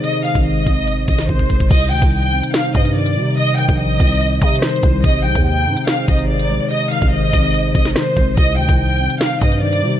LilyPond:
<<
  \new Staff \with { instrumentName = "Violin section" } { \time 4/4 \key c \minor \tempo 4 = 144 ees''8 f''8 ees''4. ees''8 c''4 | ees''8 g''8 g''4 f''8 ees''8 d''4 | ees''8 g''8 ees''4. ees''8 c''4 | ees''8 g''8 g''4 f''8 ees''8 d''4 |
ees''8 f''8 ees''4. ees''8 c''4 | ees''8 g''8 g''4 f''8 ees''8 d''4 | }
  \new Staff \with { instrumentName = "Analog synth pad" } { \time 4/4 \key c \minor <aes ees' aes' c''>1 | <c g ees' c''>1~ | <c g ees' c''>1 | <aes ees' aes'>1~ |
<aes ees' aes'>1 | <c g ees'>1 | }
  \new Staff \with { instrumentName = "Tine electric piano" } { \clef bass \time 4/4 \key c \minor <c ees aes>8 ees4 c'4 c8 ees8 aes8 | c8 ees4 c'4 c8 ees8 g8 | c8 ees4 c'4 c8 ees8 g8 | c8 ees4 c'4 c8 ees8 aes8 |
c8 ees4 c'4 c8 ees8 aes8 | c8 ees4 c'4 c8 ees8 g8 | }
  \new Staff \with { instrumentName = "808-style bass" } { \clef bass \time 4/4 \key c \minor r8. aes,,8. aes,,4 aes,,8 aes,,4 | c,8 d,16 c,4 r8. g,4 c8~ | c8. bes,,8. c,4 c8 r8 c,8 | aes,,8 c,16 ees,8. aes,16 r8. aes,,4 bes,,16 r16 |
r8. aes,,8. aes,,4 aes,,8 r8 aes,,8 | c,8 d,16 c,4 r8. g,4 c8 | }
  \new DrumStaff \with { instrumentName = "Drums" } \drummode { \time 4/4 hh8 hh16 bd16 r8 <hh bd>8 hh8 <hh bd>16 <hh sn>16 bd16 bd16 <hho bd>16 bd16 | <cymc hh bd>8. <hh bd>16 r8. hh16 <hh sn>8 <hh bd>16 hh16 r16 hh8. | hh8 hh16 bd16 r8 <hh bd>8 \tuplet 3/2 { hh16 r16 r16 <hh bd>16 hh16 hh16 <hh ss sn>16 hh16 hh16 <hh bd>16 r16 r16 } | <hh bd>8. <hh bd>16 r8. hh16 <hh sn>8 <hh bd>16 hh16 r16 hh8. |
hh8 hh16 bd16 r8 <hh bd>8 hh8 <hh bd>16 <hh sn>16 <ss sn>8 <hho bd>8 | <hh bd>8. <hh bd>16 r8. hh16 <hh sn>8 <hh bd>16 hh16 r16 hh8. | }
>>